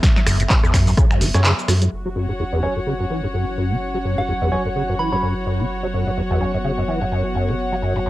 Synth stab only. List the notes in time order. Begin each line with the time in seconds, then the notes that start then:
1.34 F#3 C#4 C#5
2.63 F#3 C#4 C#5
4.52 F#3 C#4 C#5
5.12 F#3 C#4 C#5
6.41 F#3 C#4 C#5